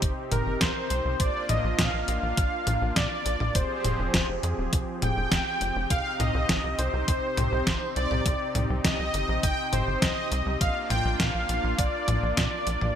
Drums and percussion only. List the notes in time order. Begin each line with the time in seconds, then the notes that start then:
0.02 kick, closed hi-hat
0.32 closed hi-hat, mid tom
0.61 kick, snare, closed hi-hat
0.90 closed hi-hat
1.20 kick, closed hi-hat
1.49 closed hi-hat, mid tom
1.79 kick, snare, closed hi-hat
2.08 closed hi-hat
2.37 kick, closed hi-hat
2.67 closed hi-hat, mid tom
2.96 kick, snare, closed hi-hat
3.26 closed hi-hat
3.40 mid tom
3.55 kick, closed hi-hat
3.85 closed hi-hat, mid tom
4.14 kick, snare, closed hi-hat
4.43 closed hi-hat
4.73 kick, closed hi-hat
5.02 closed hi-hat, mid tom
5.32 kick, snare, closed hi-hat
5.61 closed hi-hat
5.90 kick, closed hi-hat
6.20 closed hi-hat, mid tom
6.49 kick, snare, closed hi-hat
6.79 closed hi-hat
7.08 kick, closed hi-hat
7.37 closed hi-hat, mid tom
7.67 kick, snare, closed hi-hat
7.96 closed hi-hat
8.11 mid tom
8.26 kick, closed hi-hat
8.55 closed hi-hat, mid tom
8.84 kick, snare, closed hi-hat
9.14 closed hi-hat
9.43 kick, closed hi-hat
9.73 closed hi-hat, mid tom
10.02 kick, snare, closed hi-hat
10.32 closed hi-hat
10.61 kick, closed hi-hat
10.90 closed hi-hat, mid tom
11.20 kick, snare, closed hi-hat
11.49 closed hi-hat
11.79 kick, closed hi-hat
12.08 closed hi-hat, mid tom
12.37 kick, snare, closed hi-hat
12.67 closed hi-hat
12.81 mid tom